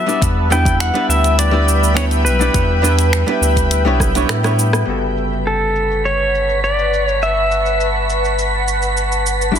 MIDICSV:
0, 0, Header, 1, 7, 480
1, 0, Start_track
1, 0, Tempo, 582524
1, 180, Time_signature, 4, 2, 24, 8
1, 7904, End_track
2, 0, Start_track
2, 0, Title_t, "Synth texture"
2, 0, Program_c, 0, 99
2, 4016, Note_on_c, 0, 95, 74
2, 7904, Note_off_c, 0, 95, 0
2, 7904, End_track
3, 0, Start_track
3, 0, Title_t, "Ambient pad"
3, 0, Program_c, 1, 92
3, 0, Note_on_c, 1, 71, 82
3, 0, Note_on_c, 1, 76, 73
3, 0, Note_on_c, 1, 78, 73
3, 0, Note_on_c, 1, 81, 89
3, 145, Note_off_c, 1, 78, 0
3, 146, Note_off_c, 1, 81, 0
3, 147, Note_off_c, 1, 71, 0
3, 147, Note_off_c, 1, 76, 0
3, 175, Note_on_c, 1, 71, 80
3, 178, Note_on_c, 1, 79, 74
3, 179, Note_on_c, 1, 76, 75
3, 3984, Note_off_c, 1, 71, 0
3, 3986, Note_off_c, 1, 76, 0
3, 3986, Note_off_c, 1, 79, 0
3, 4012, Note_on_c, 1, 81, 69
3, 4014, Note_on_c, 1, 85, 80
3, 4015, Note_on_c, 1, 71, 74
3, 4016, Note_on_c, 1, 78, 69
3, 7823, Note_off_c, 1, 81, 0
3, 7824, Note_off_c, 1, 71, 0
3, 7824, Note_off_c, 1, 85, 0
3, 7842, Note_on_c, 1, 74, 75
3, 7846, Note_on_c, 1, 88, 85
3, 7904, Note_off_c, 1, 74, 0
3, 7904, Note_off_c, 1, 78, 0
3, 7904, Note_off_c, 1, 88, 0
3, 7904, End_track
4, 0, Start_track
4, 0, Title_t, "Pedal steel guitar"
4, 0, Program_c, 2, 26
4, 0, Note_on_c, 2, 76, 102
4, 169, Note_off_c, 2, 76, 0
4, 429, Note_on_c, 2, 79, 97
4, 664, Note_off_c, 2, 79, 0
4, 668, Note_on_c, 2, 78, 106
4, 901, Note_off_c, 2, 78, 0
4, 904, Note_on_c, 2, 76, 94
4, 1143, Note_on_c, 2, 74, 101
4, 1149, Note_off_c, 2, 76, 0
4, 1619, Note_on_c, 2, 73, 85
4, 1636, Note_off_c, 2, 74, 0
4, 1684, Note_off_c, 2, 73, 0
4, 1852, Note_on_c, 2, 71, 83
4, 3263, Note_off_c, 2, 71, 0
4, 4507, Note_on_c, 2, 69, 67
4, 4988, Note_on_c, 2, 73, 89
4, 4997, Note_off_c, 2, 69, 0
4, 5431, Note_off_c, 2, 73, 0
4, 5470, Note_on_c, 2, 74, 85
4, 5824, Note_off_c, 2, 74, 0
4, 5824, Note_on_c, 2, 73, 85
4, 5956, Note_on_c, 2, 76, 92
4, 5959, Note_off_c, 2, 73, 0
4, 7595, Note_off_c, 2, 76, 0
4, 7904, End_track
5, 0, Start_track
5, 0, Title_t, "Hollow-body jazz guitar"
5, 0, Program_c, 3, 26
5, 52, Note_on_c, 3, 55, 87
5, 56, Note_on_c, 3, 59, 82
5, 63, Note_on_c, 3, 62, 80
5, 70, Note_on_c, 3, 64, 63
5, 70, Note_on_c, 3, 74, 99
5, 386, Note_off_c, 3, 55, 0
5, 389, Note_off_c, 3, 59, 0
5, 392, Note_off_c, 3, 62, 0
5, 394, Note_off_c, 3, 64, 0
5, 395, Note_off_c, 3, 74, 0
5, 413, Note_on_c, 3, 55, 96
5, 419, Note_on_c, 3, 59, 88
5, 424, Note_on_c, 3, 62, 90
5, 431, Note_on_c, 3, 71, 104
5, 432, Note_on_c, 3, 64, 71
5, 749, Note_off_c, 3, 55, 0
5, 752, Note_off_c, 3, 59, 0
5, 755, Note_off_c, 3, 62, 0
5, 757, Note_off_c, 3, 64, 0
5, 759, Note_off_c, 3, 71, 0
5, 771, Note_on_c, 3, 55, 97
5, 776, Note_on_c, 3, 59, 85
5, 781, Note_on_c, 3, 62, 85
5, 786, Note_on_c, 3, 64, 84
5, 791, Note_on_c, 3, 71, 102
5, 1227, Note_off_c, 3, 55, 0
5, 1229, Note_off_c, 3, 59, 0
5, 1232, Note_off_c, 3, 62, 0
5, 1234, Note_off_c, 3, 64, 0
5, 1237, Note_off_c, 3, 71, 0
5, 1246, Note_on_c, 3, 55, 97
5, 1251, Note_on_c, 3, 59, 71
5, 1256, Note_on_c, 3, 62, 86
5, 1262, Note_on_c, 3, 64, 79
5, 1266, Note_on_c, 3, 74, 87
5, 1584, Note_off_c, 3, 55, 0
5, 1585, Note_off_c, 3, 59, 0
5, 1588, Note_off_c, 3, 62, 0
5, 1592, Note_off_c, 3, 64, 0
5, 1593, Note_off_c, 3, 74, 0
5, 1601, Note_on_c, 3, 55, 83
5, 1607, Note_on_c, 3, 59, 79
5, 1609, Note_on_c, 3, 62, 78
5, 1618, Note_on_c, 3, 64, 66
5, 1621, Note_on_c, 3, 71, 92
5, 1943, Note_off_c, 3, 55, 0
5, 1946, Note_off_c, 3, 59, 0
5, 1948, Note_off_c, 3, 62, 0
5, 1949, Note_off_c, 3, 64, 0
5, 1953, Note_off_c, 3, 71, 0
5, 1970, Note_on_c, 3, 55, 84
5, 1973, Note_on_c, 3, 59, 83
5, 1981, Note_on_c, 3, 62, 83
5, 1985, Note_on_c, 3, 64, 77
5, 1993, Note_on_c, 3, 74, 93
5, 2305, Note_off_c, 3, 55, 0
5, 2307, Note_off_c, 3, 59, 0
5, 2311, Note_off_c, 3, 62, 0
5, 2313, Note_off_c, 3, 64, 0
5, 2317, Note_off_c, 3, 74, 0
5, 2322, Note_on_c, 3, 55, 81
5, 2329, Note_on_c, 3, 59, 80
5, 2331, Note_on_c, 3, 62, 92
5, 2337, Note_on_c, 3, 64, 75
5, 2344, Note_on_c, 3, 71, 98
5, 2664, Note_off_c, 3, 55, 0
5, 2665, Note_off_c, 3, 59, 0
5, 2669, Note_off_c, 3, 62, 0
5, 2670, Note_off_c, 3, 64, 0
5, 2674, Note_off_c, 3, 71, 0
5, 2689, Note_on_c, 3, 55, 95
5, 2695, Note_on_c, 3, 59, 85
5, 2698, Note_on_c, 3, 62, 88
5, 2704, Note_on_c, 3, 64, 77
5, 2710, Note_on_c, 3, 71, 109
5, 3146, Note_off_c, 3, 55, 0
5, 3149, Note_off_c, 3, 59, 0
5, 3151, Note_off_c, 3, 62, 0
5, 3153, Note_off_c, 3, 64, 0
5, 3156, Note_off_c, 3, 71, 0
5, 3171, Note_on_c, 3, 55, 94
5, 3177, Note_on_c, 3, 59, 76
5, 3181, Note_on_c, 3, 62, 84
5, 3184, Note_on_c, 3, 64, 82
5, 3192, Note_on_c, 3, 73, 102
5, 3392, Note_off_c, 3, 55, 0
5, 3394, Note_off_c, 3, 59, 0
5, 3397, Note_off_c, 3, 62, 0
5, 3398, Note_off_c, 3, 64, 0
5, 3402, Note_off_c, 3, 73, 0
5, 3417, Note_on_c, 3, 55, 89
5, 3422, Note_on_c, 3, 59, 81
5, 3426, Note_on_c, 3, 62, 77
5, 3430, Note_on_c, 3, 64, 82
5, 3437, Note_on_c, 3, 73, 97
5, 3630, Note_off_c, 3, 55, 0
5, 3632, Note_off_c, 3, 59, 0
5, 3635, Note_off_c, 3, 62, 0
5, 3636, Note_off_c, 3, 64, 0
5, 3640, Note_off_c, 3, 73, 0
5, 3652, Note_on_c, 3, 55, 76
5, 3656, Note_on_c, 3, 59, 69
5, 3662, Note_on_c, 3, 62, 71
5, 3667, Note_on_c, 3, 64, 61
5, 3672, Note_on_c, 3, 73, 90
5, 3990, Note_off_c, 3, 55, 0
5, 4000, Note_on_c, 3, 55, 60
5, 4001, Note_off_c, 3, 59, 0
5, 4006, Note_off_c, 3, 62, 0
5, 4007, Note_off_c, 3, 64, 0
5, 4010, Note_on_c, 3, 59, 53
5, 4011, Note_off_c, 3, 73, 0
5, 4019, Note_on_c, 3, 49, 55
5, 4027, Note_on_c, 3, 66, 58
5, 4038, Note_on_c, 3, 69, 73
5, 7822, Note_off_c, 3, 55, 0
5, 7827, Note_off_c, 3, 59, 0
5, 7831, Note_off_c, 3, 49, 0
5, 7835, Note_off_c, 3, 66, 0
5, 7840, Note_off_c, 3, 69, 0
5, 7841, Note_on_c, 3, 55, 65
5, 7851, Note_on_c, 3, 62, 57
5, 7857, Note_on_c, 3, 64, 64
5, 7868, Note_on_c, 3, 66, 63
5, 7877, Note_on_c, 3, 71, 72
5, 7904, Note_off_c, 3, 55, 0
5, 7904, Note_off_c, 3, 62, 0
5, 7904, Note_off_c, 3, 64, 0
5, 7904, Note_off_c, 3, 66, 0
5, 7904, Note_off_c, 3, 71, 0
5, 7904, End_track
6, 0, Start_track
6, 0, Title_t, "Sub bass"
6, 0, Program_c, 4, 38
6, 179, Note_on_c, 4, 40, 97
6, 750, Note_off_c, 4, 40, 0
6, 894, Note_on_c, 4, 38, 84
6, 1850, Note_on_c, 4, 35, 91
6, 1862, Note_off_c, 4, 38, 0
6, 2056, Note_off_c, 4, 35, 0
6, 2096, Note_on_c, 4, 40, 96
6, 2668, Note_off_c, 4, 40, 0
6, 2809, Note_on_c, 4, 38, 85
6, 3174, Note_on_c, 4, 35, 100
6, 3186, Note_off_c, 4, 38, 0
6, 3505, Note_off_c, 4, 35, 0
6, 3534, Note_on_c, 4, 45, 77
6, 3986, Note_off_c, 4, 45, 0
6, 4013, Note_on_c, 4, 31, 82
6, 7833, Note_off_c, 4, 31, 0
6, 7854, Note_on_c, 4, 31, 87
6, 7904, Note_off_c, 4, 31, 0
6, 7904, End_track
7, 0, Start_track
7, 0, Title_t, "Drums"
7, 74, Note_on_c, 9, 69, 30
7, 156, Note_off_c, 9, 69, 0
7, 179, Note_on_c, 9, 36, 112
7, 184, Note_on_c, 9, 42, 68
7, 191, Note_on_c, 9, 69, 42
7, 261, Note_off_c, 9, 36, 0
7, 266, Note_off_c, 9, 42, 0
7, 273, Note_off_c, 9, 69, 0
7, 428, Note_on_c, 9, 69, 68
7, 511, Note_off_c, 9, 69, 0
7, 539, Note_on_c, 9, 36, 104
7, 546, Note_on_c, 9, 42, 48
7, 554, Note_on_c, 9, 69, 29
7, 621, Note_off_c, 9, 36, 0
7, 629, Note_off_c, 9, 42, 0
7, 636, Note_off_c, 9, 69, 0
7, 662, Note_on_c, 9, 26, 95
7, 662, Note_on_c, 9, 42, 63
7, 670, Note_on_c, 9, 69, 38
7, 745, Note_off_c, 9, 26, 0
7, 745, Note_off_c, 9, 42, 0
7, 752, Note_off_c, 9, 69, 0
7, 785, Note_on_c, 9, 42, 31
7, 868, Note_off_c, 9, 42, 0
7, 910, Note_on_c, 9, 69, 72
7, 992, Note_off_c, 9, 69, 0
7, 1025, Note_on_c, 9, 42, 41
7, 1032, Note_on_c, 9, 69, 29
7, 1107, Note_off_c, 9, 42, 0
7, 1115, Note_off_c, 9, 69, 0
7, 1144, Note_on_c, 9, 42, 75
7, 1151, Note_on_c, 9, 69, 45
7, 1226, Note_off_c, 9, 42, 0
7, 1234, Note_off_c, 9, 69, 0
7, 1389, Note_on_c, 9, 69, 73
7, 1472, Note_off_c, 9, 69, 0
7, 1511, Note_on_c, 9, 69, 31
7, 1594, Note_off_c, 9, 69, 0
7, 1620, Note_on_c, 9, 26, 94
7, 1620, Note_on_c, 9, 42, 68
7, 1627, Note_on_c, 9, 69, 43
7, 1702, Note_off_c, 9, 26, 0
7, 1702, Note_off_c, 9, 42, 0
7, 1710, Note_off_c, 9, 69, 0
7, 1741, Note_on_c, 9, 42, 30
7, 1748, Note_on_c, 9, 69, 26
7, 1823, Note_off_c, 9, 42, 0
7, 1831, Note_off_c, 9, 69, 0
7, 1865, Note_on_c, 9, 69, 72
7, 1948, Note_off_c, 9, 69, 0
7, 1986, Note_on_c, 9, 69, 30
7, 2068, Note_off_c, 9, 69, 0
7, 2095, Note_on_c, 9, 36, 112
7, 2096, Note_on_c, 9, 42, 67
7, 2104, Note_on_c, 9, 69, 44
7, 2178, Note_off_c, 9, 36, 0
7, 2179, Note_off_c, 9, 42, 0
7, 2186, Note_off_c, 9, 69, 0
7, 2345, Note_on_c, 9, 69, 72
7, 2427, Note_off_c, 9, 69, 0
7, 2460, Note_on_c, 9, 42, 44
7, 2467, Note_on_c, 9, 69, 31
7, 2543, Note_off_c, 9, 42, 0
7, 2550, Note_off_c, 9, 69, 0
7, 2579, Note_on_c, 9, 26, 97
7, 2579, Note_on_c, 9, 42, 64
7, 2587, Note_on_c, 9, 69, 44
7, 2662, Note_off_c, 9, 26, 0
7, 2662, Note_off_c, 9, 42, 0
7, 2669, Note_off_c, 9, 69, 0
7, 2702, Note_on_c, 9, 42, 29
7, 2784, Note_off_c, 9, 42, 0
7, 2825, Note_on_c, 9, 69, 75
7, 2908, Note_off_c, 9, 69, 0
7, 2937, Note_on_c, 9, 36, 56
7, 2942, Note_on_c, 9, 42, 43
7, 2949, Note_on_c, 9, 69, 28
7, 3020, Note_off_c, 9, 36, 0
7, 3024, Note_off_c, 9, 42, 0
7, 3031, Note_off_c, 9, 69, 0
7, 3057, Note_on_c, 9, 42, 73
7, 3065, Note_on_c, 9, 69, 42
7, 3140, Note_off_c, 9, 42, 0
7, 3147, Note_off_c, 9, 69, 0
7, 3296, Note_on_c, 9, 36, 91
7, 3298, Note_on_c, 9, 37, 57
7, 3306, Note_on_c, 9, 69, 70
7, 3378, Note_off_c, 9, 36, 0
7, 3381, Note_off_c, 9, 37, 0
7, 3388, Note_off_c, 9, 69, 0
7, 3422, Note_on_c, 9, 42, 30
7, 3429, Note_on_c, 9, 69, 31
7, 3504, Note_off_c, 9, 42, 0
7, 3511, Note_off_c, 9, 69, 0
7, 3537, Note_on_c, 9, 26, 93
7, 3537, Note_on_c, 9, 37, 75
7, 3537, Note_on_c, 9, 42, 63
7, 3544, Note_on_c, 9, 69, 42
7, 3619, Note_off_c, 9, 26, 0
7, 3619, Note_off_c, 9, 37, 0
7, 3619, Note_off_c, 9, 42, 0
7, 3627, Note_off_c, 9, 69, 0
7, 3661, Note_on_c, 9, 37, 70
7, 3661, Note_on_c, 9, 42, 31
7, 3669, Note_on_c, 9, 69, 28
7, 3744, Note_off_c, 9, 37, 0
7, 3744, Note_off_c, 9, 42, 0
7, 3751, Note_off_c, 9, 69, 0
7, 3783, Note_on_c, 9, 69, 72
7, 3866, Note_off_c, 9, 69, 0
7, 3900, Note_on_c, 9, 37, 86
7, 3907, Note_on_c, 9, 69, 31
7, 3982, Note_off_c, 9, 37, 0
7, 3990, Note_off_c, 9, 69, 0
7, 4024, Note_on_c, 9, 69, 37
7, 4106, Note_off_c, 9, 69, 0
7, 4263, Note_on_c, 9, 69, 62
7, 4345, Note_off_c, 9, 69, 0
7, 4386, Note_on_c, 9, 69, 27
7, 4469, Note_off_c, 9, 69, 0
7, 4505, Note_on_c, 9, 69, 36
7, 4587, Note_off_c, 9, 69, 0
7, 4742, Note_on_c, 9, 69, 64
7, 4825, Note_off_c, 9, 69, 0
7, 4871, Note_on_c, 9, 69, 26
7, 4953, Note_off_c, 9, 69, 0
7, 4989, Note_on_c, 9, 69, 40
7, 5071, Note_off_c, 9, 69, 0
7, 5230, Note_on_c, 9, 69, 71
7, 5313, Note_off_c, 9, 69, 0
7, 5353, Note_on_c, 9, 69, 30
7, 5435, Note_off_c, 9, 69, 0
7, 5473, Note_on_c, 9, 69, 36
7, 5555, Note_off_c, 9, 69, 0
7, 5593, Note_on_c, 9, 69, 26
7, 5675, Note_off_c, 9, 69, 0
7, 5715, Note_on_c, 9, 69, 69
7, 5798, Note_off_c, 9, 69, 0
7, 5837, Note_on_c, 9, 69, 28
7, 5919, Note_off_c, 9, 69, 0
7, 5951, Note_on_c, 9, 69, 41
7, 6033, Note_off_c, 9, 69, 0
7, 6191, Note_on_c, 9, 69, 69
7, 6273, Note_off_c, 9, 69, 0
7, 6311, Note_on_c, 9, 69, 31
7, 6394, Note_off_c, 9, 69, 0
7, 6431, Note_on_c, 9, 69, 41
7, 6513, Note_off_c, 9, 69, 0
7, 6670, Note_on_c, 9, 69, 69
7, 6752, Note_off_c, 9, 69, 0
7, 6794, Note_on_c, 9, 69, 30
7, 6877, Note_off_c, 9, 69, 0
7, 6910, Note_on_c, 9, 69, 44
7, 6993, Note_off_c, 9, 69, 0
7, 7152, Note_on_c, 9, 69, 74
7, 7234, Note_off_c, 9, 69, 0
7, 7270, Note_on_c, 9, 69, 30
7, 7352, Note_off_c, 9, 69, 0
7, 7391, Note_on_c, 9, 69, 40
7, 7474, Note_off_c, 9, 69, 0
7, 7515, Note_on_c, 9, 69, 29
7, 7597, Note_off_c, 9, 69, 0
7, 7634, Note_on_c, 9, 69, 72
7, 7716, Note_off_c, 9, 69, 0
7, 7758, Note_on_c, 9, 69, 29
7, 7840, Note_off_c, 9, 69, 0
7, 7875, Note_on_c, 9, 69, 41
7, 7904, Note_off_c, 9, 69, 0
7, 7904, End_track
0, 0, End_of_file